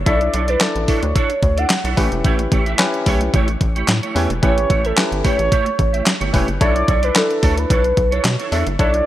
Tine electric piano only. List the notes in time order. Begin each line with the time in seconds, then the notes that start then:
0.06 D4 E4 A4 E5
0.61 D4 E4 A4 D5
1.96 C#4 E4 G4 B4
2.79 C#4 E4 G4 B4
4.15 C#4 E4 G4 B4
4.42 C#4 E4 G4 B4
4.97 C#4 E4 G4 B4
6.33 C#4 E4 G4 B4
6.61 D4 E4 A4 C#5
7.15 D4 E4 A4 B4
8.52 D4 E4 A4 E5
8.79 D4 E4 A4 C#5